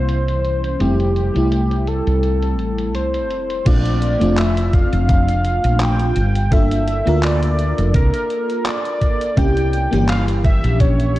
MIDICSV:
0, 0, Header, 1, 5, 480
1, 0, Start_track
1, 0, Tempo, 714286
1, 540, Time_signature, 4, 2, 24, 8
1, 7521, End_track
2, 0, Start_track
2, 0, Title_t, "Soft synth lead"
2, 0, Program_c, 0, 80
2, 0, Note_on_c, 0, 72, 102
2, 540, Note_on_c, 0, 67, 97
2, 550, Note_off_c, 0, 72, 0
2, 1262, Note_on_c, 0, 69, 86
2, 1272, Note_off_c, 0, 67, 0
2, 1981, Note_off_c, 0, 69, 0
2, 1984, Note_on_c, 0, 72, 107
2, 2464, Note_on_c, 0, 74, 112
2, 2474, Note_off_c, 0, 72, 0
2, 2943, Note_on_c, 0, 76, 110
2, 2953, Note_off_c, 0, 74, 0
2, 3184, Note_on_c, 0, 77, 124
2, 3194, Note_off_c, 0, 76, 0
2, 3904, Note_on_c, 0, 79, 121
2, 3914, Note_off_c, 0, 77, 0
2, 4384, Note_on_c, 0, 76, 114
2, 4394, Note_off_c, 0, 79, 0
2, 4863, Note_on_c, 0, 74, 106
2, 4873, Note_off_c, 0, 76, 0
2, 5336, Note_off_c, 0, 74, 0
2, 5340, Note_on_c, 0, 70, 103
2, 5821, Note_on_c, 0, 74, 113
2, 5831, Note_off_c, 0, 70, 0
2, 6300, Note_on_c, 0, 79, 121
2, 6310, Note_off_c, 0, 74, 0
2, 6776, Note_off_c, 0, 79, 0
2, 6780, Note_on_c, 0, 77, 106
2, 6874, Note_off_c, 0, 77, 0
2, 7019, Note_on_c, 0, 76, 105
2, 7259, Note_on_c, 0, 73, 117
2, 7269, Note_off_c, 0, 76, 0
2, 7521, Note_off_c, 0, 73, 0
2, 7521, End_track
3, 0, Start_track
3, 0, Title_t, "FM electric piano"
3, 0, Program_c, 1, 5
3, 0, Control_c, 1, 64, 127
3, 0, Note_on_c, 1, 52, 94
3, 0, Note_on_c, 1, 55, 86
3, 0, Note_on_c, 1, 58, 82
3, 0, Note_on_c, 1, 61, 80
3, 508, Note_off_c, 1, 55, 0
3, 511, Note_off_c, 1, 58, 0
3, 515, Note_off_c, 1, 61, 0
3, 519, Note_off_c, 1, 52, 0
3, 533, Note_on_c, 1, 55, 83
3, 537, Note_on_c, 1, 57, 77
3, 539, Note_on_c, 1, 60, 77
3, 543, Note_on_c, 1, 64, 96
3, 547, Control_c, 1, 64, 0
3, 660, Control_c, 1, 64, 127
3, 876, Note_off_c, 1, 55, 0
3, 877, Note_off_c, 1, 57, 0
3, 879, Note_off_c, 1, 60, 0
3, 881, Note_off_c, 1, 64, 0
3, 899, Note_on_c, 1, 55, 85
3, 906, Note_on_c, 1, 57, 80
3, 913, Note_on_c, 1, 60, 80
3, 920, Note_on_c, 1, 64, 97
3, 2428, Note_off_c, 1, 55, 0
3, 2431, Note_off_c, 1, 57, 0
3, 2435, Note_off_c, 1, 60, 0
3, 2438, Note_off_c, 1, 64, 0
3, 2454, Note_on_c, 1, 57, 93
3, 2457, Note_on_c, 1, 60, 83
3, 2460, Note_on_c, 1, 62, 83
3, 2465, Note_on_c, 1, 65, 103
3, 2469, Control_c, 1, 64, 0
3, 2575, Control_c, 1, 64, 127
3, 2796, Note_off_c, 1, 57, 0
3, 2798, Note_off_c, 1, 60, 0
3, 2799, Note_off_c, 1, 62, 0
3, 2802, Note_off_c, 1, 65, 0
3, 2820, Note_on_c, 1, 57, 93
3, 2827, Note_on_c, 1, 60, 84
3, 2834, Note_on_c, 1, 62, 85
3, 2840, Note_on_c, 1, 65, 102
3, 4121, Note_off_c, 1, 57, 0
3, 4125, Note_off_c, 1, 60, 0
3, 4128, Note_off_c, 1, 62, 0
3, 4131, Note_off_c, 1, 65, 0
3, 4148, Control_c, 1, 64, 0
3, 4246, Control_c, 1, 64, 127
3, 4377, Note_on_c, 1, 58, 91
3, 4380, Note_on_c, 1, 62, 81
3, 4382, Note_on_c, 1, 65, 86
3, 4386, Note_on_c, 1, 69, 102
3, 4718, Note_off_c, 1, 58, 0
3, 4719, Note_off_c, 1, 62, 0
3, 4720, Note_off_c, 1, 65, 0
3, 4722, Note_off_c, 1, 69, 0
3, 4741, Note_on_c, 1, 58, 93
3, 4747, Note_on_c, 1, 62, 85
3, 4754, Note_on_c, 1, 65, 86
3, 4762, Note_on_c, 1, 70, 104
3, 6269, Note_off_c, 1, 58, 0
3, 6272, Note_off_c, 1, 62, 0
3, 6275, Note_off_c, 1, 65, 0
3, 6279, Note_off_c, 1, 70, 0
3, 6293, Note_on_c, 1, 58, 93
3, 6298, Note_on_c, 1, 61, 83
3, 6300, Note_on_c, 1, 64, 87
3, 6304, Note_on_c, 1, 67, 101
3, 6308, Control_c, 1, 64, 0
3, 6421, Control_c, 1, 64, 127
3, 6636, Note_off_c, 1, 58, 0
3, 6638, Note_off_c, 1, 61, 0
3, 6639, Note_off_c, 1, 64, 0
3, 6641, Note_off_c, 1, 67, 0
3, 6659, Note_on_c, 1, 58, 96
3, 6666, Note_on_c, 1, 61, 89
3, 6673, Note_on_c, 1, 52, 87
3, 6679, Note_on_c, 1, 67, 104
3, 7521, Note_off_c, 1, 52, 0
3, 7521, Note_off_c, 1, 58, 0
3, 7521, Note_off_c, 1, 61, 0
3, 7521, Note_off_c, 1, 67, 0
3, 7521, End_track
4, 0, Start_track
4, 0, Title_t, "Fretless electric bass"
4, 0, Program_c, 2, 35
4, 0, Note_on_c, 2, 36, 91
4, 503, Note_off_c, 2, 36, 0
4, 539, Note_on_c, 2, 29, 91
4, 866, Note_off_c, 2, 29, 0
4, 911, Note_on_c, 2, 36, 81
4, 1347, Note_off_c, 2, 36, 0
4, 1390, Note_on_c, 2, 36, 82
4, 1739, Note_off_c, 2, 36, 0
4, 1739, Note_on_c, 2, 33, 95
4, 1980, Note_off_c, 2, 33, 0
4, 1980, Note_on_c, 2, 36, 74
4, 2219, Note_off_c, 2, 36, 0
4, 2219, Note_on_c, 2, 29, 86
4, 2414, Note_off_c, 2, 29, 0
4, 2460, Note_on_c, 2, 34, 95
4, 2787, Note_off_c, 2, 34, 0
4, 2829, Note_on_c, 2, 29, 90
4, 3266, Note_off_c, 2, 29, 0
4, 3310, Note_on_c, 2, 29, 90
4, 3746, Note_off_c, 2, 29, 0
4, 3791, Note_on_c, 2, 34, 98
4, 4103, Note_off_c, 2, 34, 0
4, 4140, Note_on_c, 2, 31, 99
4, 4706, Note_off_c, 2, 31, 0
4, 4750, Note_on_c, 2, 38, 91
4, 5186, Note_off_c, 2, 38, 0
4, 5229, Note_on_c, 2, 29, 89
4, 5316, Note_off_c, 2, 29, 0
4, 5338, Note_on_c, 2, 36, 92
4, 5442, Note_off_c, 2, 36, 0
4, 6298, Note_on_c, 2, 36, 103
4, 6626, Note_off_c, 2, 36, 0
4, 6669, Note_on_c, 2, 31, 90
4, 7106, Note_off_c, 2, 31, 0
4, 7150, Note_on_c, 2, 34, 89
4, 7521, Note_off_c, 2, 34, 0
4, 7521, End_track
5, 0, Start_track
5, 0, Title_t, "Drums"
5, 59, Note_on_c, 9, 42, 82
5, 126, Note_off_c, 9, 42, 0
5, 191, Note_on_c, 9, 42, 37
5, 258, Note_off_c, 9, 42, 0
5, 300, Note_on_c, 9, 42, 62
5, 367, Note_off_c, 9, 42, 0
5, 431, Note_on_c, 9, 42, 36
5, 498, Note_off_c, 9, 42, 0
5, 540, Note_on_c, 9, 42, 86
5, 607, Note_off_c, 9, 42, 0
5, 671, Note_on_c, 9, 42, 36
5, 738, Note_off_c, 9, 42, 0
5, 781, Note_on_c, 9, 42, 60
5, 848, Note_off_c, 9, 42, 0
5, 913, Note_on_c, 9, 42, 37
5, 980, Note_off_c, 9, 42, 0
5, 1021, Note_on_c, 9, 42, 86
5, 1088, Note_off_c, 9, 42, 0
5, 1151, Note_on_c, 9, 42, 37
5, 1218, Note_off_c, 9, 42, 0
5, 1259, Note_on_c, 9, 42, 62
5, 1327, Note_off_c, 9, 42, 0
5, 1392, Note_on_c, 9, 42, 37
5, 1459, Note_off_c, 9, 42, 0
5, 1499, Note_on_c, 9, 42, 84
5, 1567, Note_off_c, 9, 42, 0
5, 1630, Note_on_c, 9, 42, 36
5, 1697, Note_off_c, 9, 42, 0
5, 1740, Note_on_c, 9, 42, 33
5, 1807, Note_off_c, 9, 42, 0
5, 1871, Note_on_c, 9, 42, 37
5, 1939, Note_off_c, 9, 42, 0
5, 1981, Note_on_c, 9, 42, 89
5, 2048, Note_off_c, 9, 42, 0
5, 2111, Note_on_c, 9, 42, 38
5, 2179, Note_off_c, 9, 42, 0
5, 2221, Note_on_c, 9, 42, 62
5, 2289, Note_off_c, 9, 42, 0
5, 2352, Note_on_c, 9, 42, 38
5, 2420, Note_off_c, 9, 42, 0
5, 2460, Note_on_c, 9, 36, 121
5, 2460, Note_on_c, 9, 42, 96
5, 2460, Note_on_c, 9, 49, 104
5, 2527, Note_off_c, 9, 36, 0
5, 2527, Note_off_c, 9, 42, 0
5, 2527, Note_off_c, 9, 49, 0
5, 2591, Note_on_c, 9, 42, 41
5, 2658, Note_off_c, 9, 42, 0
5, 2701, Note_on_c, 9, 42, 69
5, 2768, Note_off_c, 9, 42, 0
5, 2832, Note_on_c, 9, 42, 42
5, 2899, Note_off_c, 9, 42, 0
5, 2940, Note_on_c, 9, 39, 124
5, 2940, Note_on_c, 9, 42, 97
5, 3007, Note_off_c, 9, 39, 0
5, 3007, Note_off_c, 9, 42, 0
5, 3072, Note_on_c, 9, 42, 40
5, 3140, Note_off_c, 9, 42, 0
5, 3180, Note_on_c, 9, 36, 100
5, 3180, Note_on_c, 9, 42, 70
5, 3248, Note_off_c, 9, 36, 0
5, 3248, Note_off_c, 9, 42, 0
5, 3311, Note_on_c, 9, 42, 40
5, 3378, Note_off_c, 9, 42, 0
5, 3420, Note_on_c, 9, 36, 119
5, 3420, Note_on_c, 9, 42, 95
5, 3487, Note_off_c, 9, 36, 0
5, 3487, Note_off_c, 9, 42, 0
5, 3551, Note_on_c, 9, 42, 41
5, 3618, Note_off_c, 9, 42, 0
5, 3659, Note_on_c, 9, 42, 38
5, 3727, Note_off_c, 9, 42, 0
5, 3790, Note_on_c, 9, 42, 42
5, 3857, Note_off_c, 9, 42, 0
5, 3899, Note_on_c, 9, 39, 120
5, 3899, Note_on_c, 9, 42, 98
5, 3966, Note_off_c, 9, 39, 0
5, 3966, Note_off_c, 9, 42, 0
5, 4028, Note_on_c, 9, 42, 43
5, 4096, Note_off_c, 9, 42, 0
5, 4138, Note_on_c, 9, 42, 73
5, 4205, Note_off_c, 9, 42, 0
5, 4270, Note_on_c, 9, 42, 42
5, 4337, Note_off_c, 9, 42, 0
5, 4379, Note_on_c, 9, 36, 126
5, 4380, Note_on_c, 9, 42, 99
5, 4447, Note_off_c, 9, 36, 0
5, 4447, Note_off_c, 9, 42, 0
5, 4512, Note_on_c, 9, 42, 42
5, 4579, Note_off_c, 9, 42, 0
5, 4621, Note_on_c, 9, 42, 68
5, 4688, Note_off_c, 9, 42, 0
5, 4752, Note_on_c, 9, 42, 43
5, 4819, Note_off_c, 9, 42, 0
5, 4859, Note_on_c, 9, 39, 126
5, 4859, Note_on_c, 9, 42, 97
5, 4926, Note_off_c, 9, 39, 0
5, 4926, Note_off_c, 9, 42, 0
5, 4991, Note_on_c, 9, 42, 42
5, 5058, Note_off_c, 9, 42, 0
5, 5099, Note_on_c, 9, 42, 68
5, 5166, Note_off_c, 9, 42, 0
5, 5230, Note_on_c, 9, 42, 41
5, 5297, Note_off_c, 9, 42, 0
5, 5337, Note_on_c, 9, 42, 97
5, 5338, Note_on_c, 9, 36, 123
5, 5405, Note_off_c, 9, 42, 0
5, 5406, Note_off_c, 9, 36, 0
5, 5469, Note_on_c, 9, 42, 41
5, 5536, Note_off_c, 9, 42, 0
5, 5579, Note_on_c, 9, 42, 37
5, 5647, Note_off_c, 9, 42, 0
5, 5710, Note_on_c, 9, 42, 44
5, 5778, Note_off_c, 9, 42, 0
5, 5819, Note_on_c, 9, 39, 123
5, 5819, Note_on_c, 9, 42, 102
5, 5886, Note_off_c, 9, 39, 0
5, 5886, Note_off_c, 9, 42, 0
5, 5950, Note_on_c, 9, 42, 44
5, 6017, Note_off_c, 9, 42, 0
5, 6058, Note_on_c, 9, 36, 64
5, 6058, Note_on_c, 9, 42, 70
5, 6125, Note_off_c, 9, 36, 0
5, 6126, Note_off_c, 9, 42, 0
5, 6191, Note_on_c, 9, 42, 42
5, 6258, Note_off_c, 9, 42, 0
5, 6298, Note_on_c, 9, 36, 121
5, 6298, Note_on_c, 9, 42, 98
5, 6365, Note_off_c, 9, 36, 0
5, 6366, Note_off_c, 9, 42, 0
5, 6430, Note_on_c, 9, 42, 42
5, 6498, Note_off_c, 9, 42, 0
5, 6540, Note_on_c, 9, 42, 69
5, 6607, Note_off_c, 9, 42, 0
5, 6671, Note_on_c, 9, 42, 42
5, 6738, Note_off_c, 9, 42, 0
5, 6779, Note_on_c, 9, 39, 127
5, 6779, Note_on_c, 9, 42, 95
5, 6846, Note_off_c, 9, 39, 0
5, 6846, Note_off_c, 9, 42, 0
5, 6909, Note_on_c, 9, 42, 41
5, 6977, Note_off_c, 9, 42, 0
5, 7018, Note_on_c, 9, 36, 113
5, 7019, Note_on_c, 9, 42, 67
5, 7086, Note_off_c, 9, 36, 0
5, 7086, Note_off_c, 9, 42, 0
5, 7150, Note_on_c, 9, 42, 38
5, 7217, Note_off_c, 9, 42, 0
5, 7258, Note_on_c, 9, 36, 127
5, 7258, Note_on_c, 9, 42, 92
5, 7325, Note_off_c, 9, 42, 0
5, 7326, Note_off_c, 9, 36, 0
5, 7390, Note_on_c, 9, 42, 41
5, 7457, Note_off_c, 9, 42, 0
5, 7500, Note_on_c, 9, 42, 37
5, 7521, Note_off_c, 9, 42, 0
5, 7521, End_track
0, 0, End_of_file